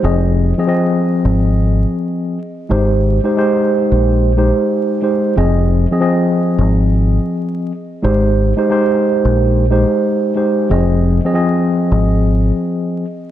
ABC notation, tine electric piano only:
X:1
M:4/4
L:1/16
Q:"Swing 16ths" 1/4=90
K:Fm
V:1 name="Tine electric piano"
[F,CAe]3 [F,CAe] [F,CAe]8- [F,CAe]2 z2 | [A,EGc]3 [A,EGc] [A,EGc]6 [A,EGc]4 [A,EGc]2 | [F,CAe]3 [F,CAe] [F,CAe]8- [F,CAe]2 z2 | [A,EGc]3 [A,EGc] [A,EGc]6 [A,EGc]4 [A,EGc]2 |
[F,CAe]3 [F,CAe] [F,CAe]8- [F,CAe]2 z2 |]